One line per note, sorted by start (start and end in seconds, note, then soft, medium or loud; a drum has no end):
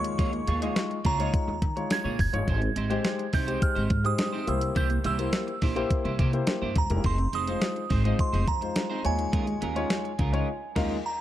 0.00 0.11 D#2 loud
0.00 0.47 G#3 medium
0.00 0.48 D#4 medium
0.00 0.48 F4 medium
0.00 0.48 C#5 medium
0.00 1.09 C#6 medium
0.04 muted clean electric guitar stroke medium
0.04 closed hi-hat medium
0.18 0.40 D#2 medium
0.18 0.40 A#3 medium
0.18 0.33 F4 medium
0.18 0.32 G#4 medium
0.18 0.31 C#5 medium
0.18 kick loud
0.18 closed hi-hat medium
0.33 muted clean electric guitar stroke soft
0.33 closed hi-hat soft
0.47 0.68 D#2 loud
0.47 0.62 A#3 medium
0.47 0.61 F4 medium
0.47 0.61 G#4 medium
0.47 0.60 C#5 medium
0.47 closed hi-hat medium
0.61 0.95 G#3 medium
0.61 0.75 A#3 medium
0.61 0.95 D#4 medium
0.61 0.96 F4 medium
0.61 0.75 F4 medium
0.61 0.76 G#4 soft
0.61 0.76 C#5 medium
0.61 0.96 D#5 medium
0.61 closed hi-hat medium
0.76 muted clean electric guitar stroke soft
0.76 snare loud
0.76 closed hi-hat medium
0.90 muted clean electric guitar stroke soft
0.90 closed hi-hat soft
1.04 1.26 C#2 medium
1.04 1.19 A#3 medium
1.04 1.19 F4 medium
1.04 1.18 G#4 medium
1.04 1.18 C#5 loud
1.04 1.94 A#5 medium
1.04 kick medium
1.04 closed hi-hat medium
1.19 1.53 G#3 medium
1.19 1.32 A#3 medium
1.19 1.53 D#4 medium
1.19 1.53 F4 medium
1.19 1.33 F4 medium
1.19 1.33 G#4 medium
1.19 1.33 C#5 medium
1.19 1.53 C#5 medium
1.19 closed hi-hat soft
1.33 muted clean electric guitar stroke soft
1.33 kick loud
1.33 closed hi-hat medium
1.48 1.58 D#2 medium
1.48 muted clean electric guitar stroke soft
1.62 1.83 D#3 loud
1.62 kick medium
1.62 closed hi-hat medium
1.76 2.10 G#3 medium
1.76 2.10 D#4 medium
1.76 2.10 F4 medium
1.76 2.10 C#5 medium
1.76 muted clean electric guitar stroke soft
1.76 closed hi-hat soft
1.90 2.19 G#6 loud
1.90 muted clean electric guitar stroke soft
1.90 snare loud
1.90 closed hi-hat medium
2.04 2.15 A#2 medium
2.04 2.18 A#3 medium
2.04 2.18 F4 medium
2.04 2.19 G#4 medium
2.04 2.19 C#5 medium
2.19 2.30 F#1 medium
2.19 3.37 G#6 loud
2.19 muted clean electric guitar stroke soft
2.19 kick medium
2.19 open hi-hat medium
2.33 2.44 G1 medium
2.33 2.47 G#3 medium
2.33 2.48 D#4 medium
2.33 2.48 F4 medium
2.33 2.48 C#5 medium
2.33 muted clean electric guitar stroke soft
2.33 closed hi-hat medium
2.48 2.68 G#1 loud
2.48 2.69 C4 medium
2.48 2.62 D#4 medium
2.48 2.61 G4 medium
2.48 2.61 C5 loud
2.48 kick loud
2.48 closed hi-hat medium
2.62 muted clean electric guitar stroke medium
2.62 closed hi-hat soft
2.76 2.97 G#1 medium
2.76 2.91 C4 medium
2.76 2.90 D#4 medium
2.76 2.90 G4 medium
2.76 2.89 C5 medium
2.76 closed hi-hat medium
2.90 3.24 G#3 loud
2.90 3.03 C4 soft
2.90 3.24 D#4 medium
2.90 3.04 D#4 medium
2.90 3.24 G4 medium
2.90 3.04 G4 medium
2.90 3.04 C5 medium
2.90 3.24 C5 loud
2.90 closed hi-hat medium
3.04 muted clean electric guitar stroke soft
3.04 snare loud
3.04 closed hi-hat medium
3.19 muted clean electric guitar stroke soft
3.19 closed hi-hat soft
3.33 3.54 C2 medium
3.33 3.48 C4 medium
3.33 3.47 D#4 medium
3.33 3.47 G4 medium
3.33 3.46 C5 medium
3.33 3.63 G6 medium
3.33 kick medium
3.33 open hi-hat medium
3.47 3.81 G#3 medium
3.47 3.60 C4 medium
3.47 3.81 D#4 medium
3.47 3.61 D#4 medium
3.47 3.81 G4 medium
3.47 3.61 G4 medium
3.47 3.62 C5 medium
3.47 3.81 C5 medium
3.47 closed hi-hat medium
3.61 4.06 F6 medium
3.61 muted clean electric guitar stroke soft
3.61 kick loud
3.61 closed hi-hat medium
3.75 3.87 G#1 medium
3.75 3.89 C4 medium
3.75 3.90 D#4 medium
3.75 3.90 G4 medium
3.75 3.90 C5 medium
3.75 closed hi-hat soft
3.90 4.11 G#2 medium
3.90 muted clean electric guitar stroke soft
3.90 kick medium
3.90 closed hi-hat medium
4.04 4.38 G#3 medium
4.04 4.38 D#4 medium
4.04 4.38 G4 medium
4.04 4.38 C5 medium
4.04 4.49 D#6 loud
4.04 muted clean electric guitar stroke medium
4.04 closed hi-hat soft
4.18 muted clean electric guitar stroke soft
4.18 snare loud
4.18 closed hi-hat medium
4.33 4.47 C4 medium
4.33 4.47 D#4 medium
4.33 4.47 G4 medium
4.33 4.47 C5 medium
4.47 4.68 C2 medium
4.47 5.04 A#3 medium
4.47 5.05 E4 medium
4.47 5.05 G4 medium
4.47 5.05 C5 medium
4.47 4.77 E6 medium
4.47 muted clean electric guitar stroke soft
4.47 closed hi-hat medium
4.61 muted clean electric guitar stroke soft
4.61 closed hi-hat medium
4.75 4.97 C2 loud
4.75 4.97 A#3 medium
4.75 4.90 E4 medium
4.75 4.89 G4 medium
4.75 4.89 C5 loud
4.75 4.90 G6 loud
4.75 kick loud
4.75 closed hi-hat medium
4.90 muted clean electric guitar stroke soft
4.90 closed hi-hat soft
5.04 5.26 C2 loud
5.04 5.19 A#3 medium
5.04 5.19 E4 medium
5.04 5.18 G4 medium
5.04 5.17 C5 medium
5.04 6.16 E6 medium
5.04 closed hi-hat medium
5.18 5.52 A#3 medium
5.18 5.32 A#3 soft
5.18 5.52 E4 medium
5.18 5.33 E4 medium
5.18 5.33 G4 medium
5.18 5.53 G4 medium
5.18 5.33 C5 medium
5.18 5.53 C5 medium
5.18 closed hi-hat medium
5.33 muted clean electric guitar stroke soft
5.33 snare loud
5.33 closed hi-hat loud
5.47 muted clean electric guitar stroke soft
5.47 closed hi-hat soft
5.62 5.83 A#1 medium
5.62 5.77 A#3 medium
5.62 5.76 E4 medium
5.62 5.75 G4 medium
5.62 5.75 C5 medium
5.62 kick medium
5.62 open hi-hat medium
5.76 6.09 A#3 medium
5.76 5.89 A#3 medium
5.76 6.10 E4 medium
5.76 5.90 E4 medium
5.76 6.10 G4 medium
5.76 5.90 G4 medium
5.76 5.90 C5 medium
5.76 6.10 C5 loud
5.76 closed hi-hat soft
5.90 muted clean electric guitar stroke soft
5.90 kick loud
5.90 closed hi-hat loud
6.05 6.15 C2 medium
6.05 6.18 A#3 medium
6.05 6.18 E4 medium
6.05 6.19 G4 medium
6.05 6.20 C5 medium
6.05 closed hi-hat soft
6.19 6.40 C3 medium
6.19 6.40 A#3 medium
6.19 6.34 E4 medium
6.19 6.33 G4 medium
6.19 6.32 C5 medium
6.19 kick medium
6.19 closed hi-hat medium
6.33 6.67 A#3 medium
6.33 6.67 E4 medium
6.33 6.67 G4 medium
6.33 6.67 C5 medium
6.33 muted clean electric guitar stroke soft
6.33 closed hi-hat soft
6.47 muted clean electric guitar stroke soft
6.47 snare loud
6.47 closed hi-hat medium
6.62 6.72 G2 medium
6.62 6.75 A#3 medium
6.62 6.75 E4 medium
6.62 6.76 G4 medium
6.62 6.76 C5 medium
6.76 6.86 D#1 loud
6.76 7.04 A#5 medium
6.76 muted clean electric guitar stroke soft
6.76 kick medium
6.76 closed hi-hat medium
6.90 7.01 E1 medium
6.90 7.05 A#3 medium
6.90 7.05 E4 medium
6.90 7.05 G4 medium
6.90 7.05 A#4 medium
6.90 muted clean electric guitar stroke soft
6.90 closed hi-hat medium
7.04 7.25 F1 loud
7.04 7.26 C4 medium
7.04 7.19 D#4 loud
7.04 7.19 G#4 loud
7.04 7.18 C5 loud
7.04 7.35 C6 loud
7.04 kick loud
7.04 closed hi-hat medium
7.18 muted clean electric guitar stroke soft
7.18 closed hi-hat soft
7.33 7.54 F1 medium
7.33 7.48 C4 medium
7.33 7.47 D#4 medium
7.33 7.47 G#4 medium
7.33 7.46 C5 medium
7.33 8.22 D#6 loud
7.33 closed hi-hat medium
7.47 7.81 G#3 medium
7.47 7.60 C4 soft
7.47 7.81 D#4 medium
7.47 7.61 D#4 medium
7.47 7.81 F4 medium
7.47 7.61 G#4 medium
7.47 7.62 C5 medium
7.47 7.81 C5 medium
7.47 closed hi-hat medium
7.62 muted clean electric guitar stroke soft
7.62 snare loud
7.62 closed hi-hat medium
7.76 muted clean electric guitar stroke soft
7.76 closed hi-hat soft
7.90 8.11 G#1 loud
7.90 8.05 C4 medium
7.90 8.04 D#4 medium
7.90 8.04 G#4 medium
7.90 8.03 C5 medium
7.90 kick medium
7.90 open hi-hat medium
8.04 8.38 G#3 medium
8.04 8.17 C4 medium
8.04 8.38 D#4 medium
8.04 8.18 D#4 medium
8.04 8.38 F4 medium
8.04 8.18 G#4 medium
8.04 8.19 C5 medium
8.04 8.39 C5 medium
8.04 closed hi-hat soft
8.19 8.49 C6 medium
8.19 muted clean electric guitar stroke soft
8.19 kick loud
8.19 closed hi-hat medium
8.33 8.44 F1 loud
8.33 8.46 C4 medium
8.33 8.46 D#4 medium
8.33 8.47 G#4 medium
8.33 8.47 C5 medium
8.33 closed hi-hat soft
8.47 8.68 F2 loud
8.47 9.07 A#5 medium
8.47 muted clean electric guitar stroke soft
8.47 kick medium
8.47 closed hi-hat medium
8.61 8.95 G#3 medium
8.61 8.95 D#4 medium
8.61 8.95 F4 medium
8.61 8.96 C5 medium
8.61 muted clean electric guitar stroke soft
8.61 closed hi-hat soft
8.75 muted clean electric guitar stroke soft
8.75 snare loud
8.75 closed hi-hat medium
8.90 9.04 C4 medium
8.90 9.04 D#4 medium
8.90 9.05 G#4 medium
8.90 9.05 C5 medium
9.04 9.26 D#2 medium
9.04 9.62 G#3 medium
9.04 9.62 D#4 medium
9.04 9.62 F4 medium
9.04 9.62 C#5 medium
9.04 11.01 G#5 medium
9.04 muted clean electric guitar stroke soft
9.04 closed hi-hat medium
9.18 muted clean electric guitar stroke soft
9.18 closed hi-hat medium
9.32 9.54 D#2 loud
9.32 9.54 G#3 medium
9.32 9.47 C#4 medium
9.32 9.46 F4 loud
9.32 9.46 A#4 medium
9.32 kick loud
9.32 closed hi-hat medium
9.47 muted clean electric guitar stroke soft
9.47 closed hi-hat soft
9.61 9.83 D#2 loud
9.61 9.76 G#3 medium
9.61 9.76 C#4 medium
9.61 9.75 F4 medium
9.61 9.74 A#4 medium
9.61 closed hi-hat medium
9.75 10.09 G#3 medium
9.75 9.89 G#3 soft
9.75 9.89 C#4 medium
9.75 10.09 D#4 medium
9.75 10.10 F4 medium
9.75 9.90 F4 medium
9.75 9.90 A#4 medium
9.75 10.10 C#5 loud
9.75 closed hi-hat medium
9.90 snare loud
9.90 closed hi-hat medium
10.04 muted clean electric guitar stroke soft
10.04 closed hi-hat soft
10.19 10.40 C#2 medium
10.19 10.34 G#3 medium
10.19 10.33 C#4 medium
10.19 10.33 F4 medium
10.19 10.32 A#4 medium
10.19 kick medium
10.19 closed hi-hat medium
10.33 10.47 G#3 medium
10.33 10.48 G#3 medium
10.33 10.48 C#4 medium
10.33 10.47 D#4 medium
10.33 10.48 F4 medium
10.33 10.47 A#4 medium
10.33 10.48 C#5 medium
10.33 closed hi-hat soft
10.76 10.96 D#2 loud
10.76 10.95 G#3 loud
10.76 10.96 G#3 loud
10.76 10.96 C#4 medium
10.76 10.96 D#4 loud
10.76 10.96 F4 loud
10.76 10.95 A#4 loud
10.76 10.96 A#4 loud
10.76 kick loud
10.76 snare loud
10.76 crash medium
11.06 11.21 A#5 medium